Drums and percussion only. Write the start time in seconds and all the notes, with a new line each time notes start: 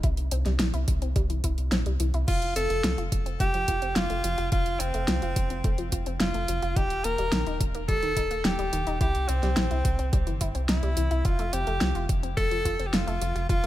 0.03 kick, closed hi-hat
0.17 closed hi-hat
0.31 closed hi-hat
0.46 snare, closed hi-hat
0.59 snare, closed hi-hat
0.74 closed hi-hat
0.88 kick, closed hi-hat
1.02 closed hi-hat
1.16 kick, closed hi-hat
1.30 closed hi-hat
1.44 kick, closed hi-hat
1.58 closed hi-hat
1.72 snare, closed hi-hat
1.86 closed hi-hat
2.00 closed hi-hat
2.14 closed hi-hat
2.28 kick, closed hi-hat, crash
2.42 closed hi-hat
2.56 closed hi-hat
2.70 closed hi-hat
2.84 snare, closed hi-hat
2.98 closed hi-hat
3.12 kick, closed hi-hat
3.26 closed hi-hat
3.40 kick, closed hi-hat
3.54 closed hi-hat
3.68 kick, closed hi-hat
3.82 closed hi-hat
3.96 snare, closed hi-hat
4.10 closed hi-hat
4.24 closed hi-hat
4.38 closed hi-hat
4.52 kick, closed hi-hat
4.66 closed hi-hat
4.80 closed hi-hat
4.94 closed hi-hat
5.08 snare, closed hi-hat
5.22 closed hi-hat
5.36 kick, closed hi-hat
5.50 closed hi-hat
5.64 kick, closed hi-hat
5.78 closed hi-hat
5.92 kick, closed hi-hat
6.06 closed hi-hat
6.20 snare, closed hi-hat
6.34 closed hi-hat
6.48 closed hi-hat
6.62 closed hi-hat
6.76 kick, closed hi-hat
6.90 closed hi-hat
7.04 closed hi-hat
7.18 closed hi-hat
7.32 snare, closed hi-hat
7.47 closed hi-hat
7.61 kick, closed hi-hat
7.75 closed hi-hat
7.89 kick, closed hi-hat
8.03 closed hi-hat
8.17 kick, closed hi-hat
8.31 closed hi-hat
8.45 snare, closed hi-hat
8.59 closed hi-hat
8.73 closed hi-hat
8.87 closed hi-hat
9.01 kick, closed hi-hat
9.15 closed hi-hat
9.29 closed hi-hat
9.43 snare, closed hi-hat
9.57 snare, closed hi-hat
9.71 closed hi-hat
9.85 kick, closed hi-hat
9.99 closed hi-hat
10.13 kick, closed hi-hat
10.27 closed hi-hat
10.41 kick, closed hi-hat
10.55 closed hi-hat
10.69 snare, closed hi-hat
10.83 closed hi-hat
10.97 closed hi-hat
11.11 closed hi-hat
11.25 kick, closed hi-hat
11.39 closed hi-hat
11.53 closed hi-hat
11.67 closed hi-hat
11.81 snare, closed hi-hat
11.95 closed hi-hat
12.09 kick, closed hi-hat
12.23 closed hi-hat
12.37 kick, closed hi-hat
12.51 closed hi-hat
12.65 kick, closed hi-hat
12.80 closed hi-hat
12.94 snare, closed hi-hat
13.08 closed hi-hat
13.22 closed hi-hat
13.36 closed hi-hat
13.49 kick, closed hi-hat